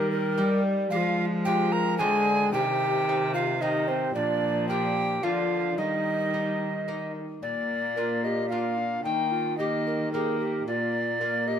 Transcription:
Already playing: lute D#3 D#4 G4, cello D#3, viola G3, recorder A#4
0.11 recorder A#4
0.38 lute G3 D#4 G4, cello G3
0.90 lute F3, cello F3, viola G#3, recorder G4 F5
0.96 recorder F4
1.45 lute G#3 C4 F4, recorder G4 G5
1.72 recorder A#4 A#5
1.98 cello D3, lute D3 G#3 C4 F4, viola G#3, recorder G#4 G#5
2.53 cello C3, lute C3, viola D#3, recorder G4 G5
3.09 lute C4 D#4
3.34 recorder F4 F5
3.60 viola D#3, lute C4 D#4, recorder D#4 D#5
3.88 recorder C4 C5
4.14 cello A#2, lute A#2, viola F3, recorder D4 D5
4.69 lute A#3 D4 F4, recorder G4 G5
5.23 lute D3 A#3 D4 F4, cello D3, viola F3, recorder F4 F5
5.78 lute D#3, cello D#3, viola G3, recorder D#4 D#5
6.33 lute A#3 D#4
6.88 lute A#3 D#4
7.42 cello A#2, lute A#2, viola A#3, recorder D5
7.96 lute A#3 D4 F4, recorder A#4
8.24 recorder G4 D#5
8.49 viola A#3, lute A#3 D4 F4, recorder F4 F5
8.78 recorder D4
9.04 cello D#3, lute D#3, viola A#3, recorder D#4 G5
9.32 recorder F4
9.58 viola A#3, lute A#3 D#4 G4, recorder G4 D#5
9.87 recorder A#4
10.13 viola A#3, lute A#3 D#4 G4, recorder G#4 A#4
10.40 recorder G4
10.67 cello A#2, lute A#2, viola A#3, recorder F4 D5
11.21 lute A#3 F4 A#4, recorder A#4
11.48 recorder G4 D#5

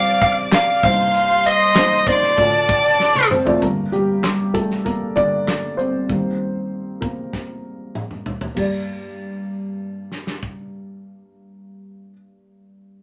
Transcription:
Already playing: upright piano F2 C3 G3 F4 C5, violin section D5 D6, lead electric guitar F5
0.21 lead electric guitar F5, kick, ride
0.52 lead electric guitar F5, snare, clap, ride
0.83 upright piano C2 G2 A#3 D#4 C5, violin section C5 C6, lead electric guitar F5, kick, open hi-hat, ride
1.14 hi-hat pedal, ride
1.45 lead electric guitar D#5, ride
1.75 upright piano A#3 D#4 C5, snare, clap, ride
2.07 upright piano A#3 D#4 C5, lead electric guitar D5, kick, ride
2.22 snare
2.37 upright piano D2 A2 A3 F4 D5, violin section A4 A5, kick, ride
2.69 kick, ride
3.00 snare
3.15 high tom
3.31 upright piano C4 C5, mid tom
3.45 upright piano A3 F4 D5, floor tom
3.62 upright piano G2 D3 A#3 A#4, kick, closed hi-hat
3.92 upright piano G3 G4, closed hi-hat
4.24 snare, clap, closed hi-hat
4.54 upright piano A3 A4, kick, closed hi-hat
4.71 snare
4.85 upright piano A#3 A#4, kick, closed hi-hat
5.16 upright piano G2 D3 A#3 D4 D5, kick, closed hi-hat
5.48 snare, clap, closed hi-hat
5.77 upright piano C4 C5, closed hi-hat
6.09 upright piano D#3 G3 A#3, kick
7.01 upright piano A#3 A#4, kick
7.33 kick, snare
7.95 mid tom
8.11 mid tom
8.26 floor tom
8.41 floor tom
8.55 upright piano G2 A#3 G4, kick, crash
8.60 upright piano D5
10.12 snare
10.27 snare
10.43 kick

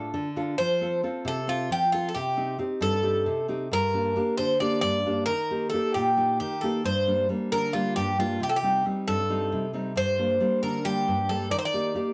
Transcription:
Already playing: nylon-string guitar A2 D4 F4 A4
0.14 nylon-string guitar D3
0.36 nylon-string guitar D4 F4 A4
0.58 nylon-string guitar F3, bouzouki C5
0.81 nylon-string guitar C4 F4 A4
1.03 nylon-string guitar C4 F4 A4
1.25 nylon-string guitar C3, bouzouki A4
1.47 nylon-string guitar C4 F4 A4, bouzouki F4
1.71 nylon-string guitar F3, bouzouki G4
1.92 nylon-string guitar C4 F4 A4, bouzouki F4
2.09 bouzouki A4
2.15 nylon-string guitar C3, bouzouki G4
2.37 nylon-string guitar C4 D#4 G4
2.58 nylon-string guitar C4 D#4 G4
2.81 nylon-string guitar G2, bouzouki A4
3.03 nylon-string guitar C4 D#4 G4
3.26 nylon-string guitar C3
3.48 nylon-string guitar C4 D#4 G4
3.71 nylon-string guitar G2, bouzouki A#4
3.94 nylon-string guitar A#3 D4 G4
4.16 nylon-string guitar A#3 D4 G4
4.37 nylon-string guitar D3, bouzouki C5
4.60 nylon-string guitar A#3 D4 G4, bouzouki D5
4.81 nylon-string guitar G2, bouzouki D5
5.06 nylon-string guitar A#3 D4 G4
5.26 nylon-string guitar D#3, bouzouki A#4
5.50 nylon-string guitar A#3 D#4 G4
5.70 nylon-string guitar A#3, bouzouki A4
5.74 nylon-string guitar D#4 G4
5.94 nylon-string guitar A#2, bouzouki G4
6.17 nylon-string guitar A#3 D#4 G4
6.40 nylon-string guitar D#3, bouzouki G4
6.61 nylon-string guitar A#3 D#4 G4, bouzouki A4
6.84 nylon-string guitar G2, bouzouki C5
7.07 nylon-string guitar G3 A#3 D4
7.29 nylon-string guitar G3 A#3 D4
7.52 nylon-string guitar D3, bouzouki A#4
7.73 nylon-string guitar G3 A#3 D4, bouzouki F4
7.96 nylon-string guitar G2, bouzouki G4
8.18 nylon-string guitar G3 A#3 D4, bouzouki F4
8.40 nylon-string guitar C3, bouzouki G4
8.49 bouzouki A4
8.56 bouzouki G4
8.63 nylon-string guitar G3 C4 D#4
8.85 nylon-string guitar G3 C4 D#4
9.08 nylon-string guitar G2, bouzouki A4
9.29 nylon-string guitar G3 C4 D#4
9.52 nylon-string guitar C3
9.73 nylon-string guitar G3 C4 D#4
9.96 nylon-string guitar G2, bouzouki C5
10.18 nylon-string guitar G3 A#3 D4
10.40 nylon-string guitar G3 A#3 D4
10.63 nylon-string guitar D3, bouzouki A#4
10.84 nylon-string guitar G3 A#3 D4, bouzouki G4
11.08 nylon-string guitar G2
11.29 nylon-string guitar G3 A#3 D4, bouzouki A4
11.51 nylon-string guitar D#3, bouzouki D5
11.59 bouzouki C5
11.65 bouzouki D5
11.74 nylon-string guitar A#3 D#4 G4
11.95 nylon-string guitar A#3 D#4 G4

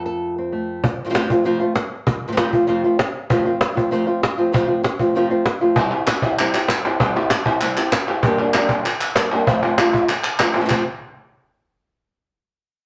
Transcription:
Already playing: nylon-string guitar F2 A3
0.06 nylon-string guitar A4
0.38 nylon-string guitar C4
0.52 nylon-string guitar A3
0.84 muted nylon-string guitar stroke, cajon bass
1.05 nylon-string guitar C3 F3 A3 C4 F4
1.10 nylon-string guitar C3 F3 A3 C4 F4
1.14 nylon-string guitar F2 C3 F3 A3 C4 F4, cajon slap
1.30 nylon-string guitar F3 A3 C4 F4, cajon bass
1.44 nylon-string guitar F2 C3 F3 A3 C4 F4, cajon slap
1.59 nylon-string guitar F3 A3 C4 F4, cajon slap
1.75 muted nylon-string guitar stroke, cajon slap
2.07 muted nylon-string guitar stroke, cajon bass
2.28 nylon-string guitar C3 F3 A3 C4 F4
2.32 nylon-string guitar C3 F3 A3 C4 F4
2.37 nylon-string guitar F2 C3 F3 A3 C4 F4, cajon slap
2.53 nylon-string guitar F3 A3 C4 F4, cajon bass
2.67 nylon-string guitar F2 C3 F3 A3 C4 F4, cajon slap
2.84 nylon-string guitar F3 A3 C4 F4
2.99 muted nylon-string guitar stroke, cajon slap
3.15 cajon slap
3.30 nylon-string guitar F2 C3 F3 A3 C4 F4, cajon bass
3.45 nylon-string guitar F3 A3 C4 F4
3.61 muted nylon-string guitar stroke, cajon slap
3.75 nylon-string guitar F3 A3 C4 F4, cajon bass
3.91 nylon-string guitar F2 C3 F3 A3 C4 F4, cajon slap
4.07 nylon-string guitar F3 A3 C4 F4
4.23 muted nylon-string guitar stroke, cajon slap
4.38 nylon-string guitar F3 A3 C4 F4, cajon slap
4.52 nylon-string guitar F2 C3 F3 A3 C4 F4, cajon bass
4.67 nylon-string guitar F3 A3 C4 F4
4.83 muted nylon-string guitar stroke, cajon slap
4.99 nylon-string guitar F3 A3 C4 F4, cajon bass
5.15 nylon-string guitar F2 C3 F3 A3 C4 F4, cajon slap
5.30 nylon-string guitar F3 A3 C4 F4, cajon slap
5.46 muted nylon-string guitar stroke, cajon slap
5.61 nylon-string guitar F3 A3 C4 F4
5.76 nylon-string guitar C3 G3 C4 E4 G4, cajon bass
5.91 nylon-string guitar C4 E4 G4
6.07 muted nylon-string guitar stroke, cajon slap, clap
6.22 nylon-string guitar C4 E4 G4, cajon bass, clap
6.39 nylon-string guitar C3 G3 C4 E4 G4, clap
6.54 nylon-string guitar C4 E4 G4, clap
6.68 muted nylon-string guitar stroke, cajon slap, clap
6.84 nylon-string guitar C4 E4 G4, cajon slap, clap
7.00 nylon-string guitar C3 G3 C4 E4 G4, cajon bass
7.16 nylon-string guitar C4 E4 G4
7.30 muted nylon-string guitar stroke, cajon slap, clap
7.46 nylon-string guitar C4 E4 G4, cajon bass, clap
7.61 nylon-string guitar C3 G3 C4 E4 G4, cajon slap, clap
7.77 nylon-string guitar C4 E4 G4, clap
7.92 muted nylon-string guitar stroke, cajon slap, clap
8.08 nylon-string guitar C4 E4 G4, cajon slap, clap
8.23 nylon-string guitar G2 D3 G3 A#3 D4 G4, cajon bass, clap
8.40 nylon-string guitar G3 A#3 D4 G4
8.54 nylon-string guitar A#3 D4 G4, cajon slap, clap
8.58 nylon-string guitar G3
8.69 cajon bass, clap
8.85 muted nylon-string guitar stroke, cajon slap, clap
9.01 clap
9.16 nylon-string guitar G3 A#3 D4 G4, cajon slap, clap
9.31 nylon-string guitar G3 A#3 D4 G4, cajon slap, clap
9.47 nylon-string guitar F2 C3 F3 A3 C4 F4, cajon bass
9.64 nylon-string guitar F3 A3 C4 F4
9.78 nylon-string guitar F3 A3 C4 F4, cajon slap, clap
9.94 cajon bass, clap
10.09 muted nylon-string guitar stroke, cajon slap, clap
10.24 clap
10.39 nylon-string guitar F3 A3 C4 F4, cajon slap, clap
10.54 nylon-string guitar C3 F3 A3 C4 F4, clap
10.60 nylon-string guitar C3 F3 A3 C4 F4
10.65 nylon-string guitar C3 F3 A3 C4 F4, clap
10.69 nylon-string guitar F2 C3 F3 A3 C4 F4, cajon bass

